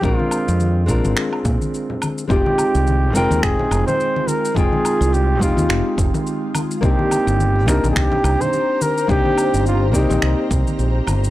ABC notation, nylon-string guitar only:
X:1
M:4/4
L:1/8
Q:"Swing 16ths" 1/4=106
K:Fdor
V:1 name="Nylon-string guitar"
[A,CDFB]3 [A,CDFB]4- [A,CDFB] | [A,CEFG]3 [A,CEFg]4- [A,CEFg] | [A,CEFg]3 [A,CEFG]4- [A,CEFG] | [B,CDEG]3 [B,CDEG]4- [B,CDEG] |
[B,CDEG]3 [B,CEGd]4- [B,CEGd] |]